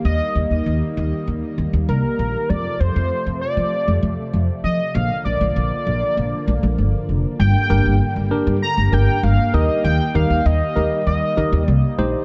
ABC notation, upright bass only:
X:1
M:4/4
L:1/16
Q:1/4=98
K:Eblyd
V:1 name="Upright bass" clef=bass
E,, z E,, E,, E,, z E,, z E,, z E,, E,, C,, z B,,, z | F,, z F,, F,, z F,, z F, z F,, F,, z F,, z F, z | B,,, z B,,, B,,, B,,, z B,,, z B,,, z B,,, B,,, G,,, z F,,, z | G,,, z G,,, G,,, z G,,, z G,, z G,,, G,,, z G,,, z E,, z |
E,, z E,, E,, E,, z E,, z E,, z E,, E,, C,, z B,,, z |]